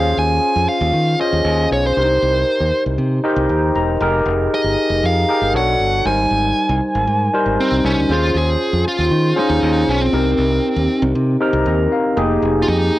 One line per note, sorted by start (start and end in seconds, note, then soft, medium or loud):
0.00 0.12 D#2 loud
0.00 0.67 C#4 medium
0.00 0.67 F4 medium
0.00 0.67 G#4 medium
0.00 0.67 C5 medium
0.00 0.16 F5 medium
0.17 0.38 D#2 medium
0.17 0.66 G#5 loud
0.56 0.66 F2 medium
0.68 1.20 F5 loud
0.81 0.91 D#2 loud
0.93 1.14 D#3 medium
1.20 1.76 C#4 medium
1.20 1.76 F4 medium
1.20 1.76 G#4 medium
1.20 1.76 C5 medium
1.20 1.68 D#5 medium
1.33 1.43 D#2 medium
1.45 1.66 D#2 medium
1.71 1.92 B1 medium
1.71 1.84 C#5 medium
1.86 2.83 C5 medium
1.97 2.17 C2 medium
1.97 2.03 D4 medium
1.97 2.72 G4 medium
1.97 2.72 A#4 medium
1.97 2.72 C5 medium
2.03 2.74 D#4 medium
2.22 2.43 C2 loud
2.60 2.71 D#2 medium
2.86 2.96 C2 medium
2.98 3.19 C3 medium
3.24 3.80 D#4 medium
3.24 3.81 G4 medium
3.24 3.81 A#4 medium
3.24 3.81 C5 medium
3.24 3.48 D#5 medium
3.36 3.47 C2 loud
3.49 3.70 D#2 medium
3.49 3.74 G5 medium
3.75 3.96 E1 medium
3.75 3.99 A#5 medium
4.01 4.21 F1 loud
4.01 4.76 D#4 medium
4.01 4.76 G4 medium
4.01 4.76 G#4 medium
4.01 4.76 A#4 loud
4.26 4.47 F1 medium
4.54 5.06 D#5 medium
4.64 4.75 G1 medium
4.90 5.00 F1 medium
5.03 5.24 F2 loud
5.03 5.52 F5 loud
5.29 5.54 D#4 medium
5.29 5.54 G4 medium
5.29 5.55 G#4 medium
5.29 5.55 A#4 medium
5.41 5.52 G1 medium
5.54 5.74 B1 loud
5.54 5.95 D4 medium
5.54 5.95 F#4 medium
5.54 5.95 A4 medium
5.54 5.95 C#5 medium
5.54 6.06 F#5 medium
5.80 6.00 G1 medium
6.05 6.26 G#1 medium
6.05 6.81 G3 medium
6.05 6.80 D#4 medium
6.05 6.81 A#4 medium
6.05 6.81 C5 medium
6.05 7.81 G#5 loud
6.31 6.51 G#1 medium
6.69 6.79 C2 loud
6.95 7.05 G#1 loud
7.07 7.28 G#2 loud
7.33 7.89 G3 medium
7.33 7.89 D#4 medium
7.33 7.90 A#4 medium
7.33 7.90 C5 loud
7.46 7.56 G#1 medium
7.60 7.85 C4 medium
7.72 7.82 C2 medium
7.85 7.95 C2 medium
7.85 8.11 C#4 medium
7.97 8.07 D2 medium
8.09 8.30 D#2 medium
8.09 8.85 C#4 medium
8.09 8.85 F4 medium
8.09 8.37 F4 loud
8.09 8.85 G#4 medium
8.09 8.85 C5 medium
8.35 8.55 D#2 medium
8.35 8.83 G#4 loud
8.73 8.83 F2 medium
8.88 9.39 F4 loud
8.99 9.09 D#2 medium
9.11 9.32 D#3 loud
9.36 9.92 C#4 medium
9.36 9.91 D#4 loud
9.36 9.93 F4 medium
9.36 9.93 G#4 medium
9.36 9.93 C5 medium
9.50 9.60 D#2 loud
9.63 9.83 D#2 loud
9.88 10.08 B1 medium
9.88 10.01 C#4 loud
10.01 11.03 C4 medium
10.13 10.34 C2 loud
10.13 10.88 C4 medium
10.13 10.88 D#4 medium
10.13 10.88 G4 medium
10.13 10.88 A#4 medium
10.38 10.59 C2 medium
10.76 10.87 D#2 loud
11.02 11.12 C2 loud
11.15 11.36 C3 loud
11.40 11.96 C4 medium
11.40 11.97 D#4 medium
11.40 11.97 G4 medium
11.40 11.97 A#4 loud
11.53 11.63 C2 loud
11.66 11.86 D#2 loud
11.66 11.90 A#5 medium
11.92 12.16 F5 medium
12.16 12.38 F1 medium
12.16 12.91 A#3 medium
12.16 12.92 D#4 medium
12.16 12.92 G4 medium
12.16 12.92 G#4 medium
12.42 12.63 F1 medium
12.62 12.69 F4 medium
12.68 12.89 F2 loud
12.68 12.99 D#4 medium